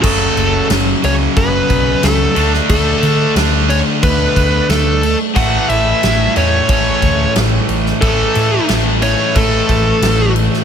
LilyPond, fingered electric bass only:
\new Staff \with { instrumentName = "Fingered electric bass" } { \clef bass \time 4/4 \key fis \minor \tempo 4 = 90 fis,,8 fis,,8 fis,,8 cis,8 fis,,8 b,,8 cis,8 d,8 | d,8 d8 d,4 d,8 d,8 d,4 | a,,8 a,,8 a,,8 e,8 a,,8 d,8 a,,8 a,,8 | a,,8 a,8 a,,4 a,,8 a,,8 a,,4 | }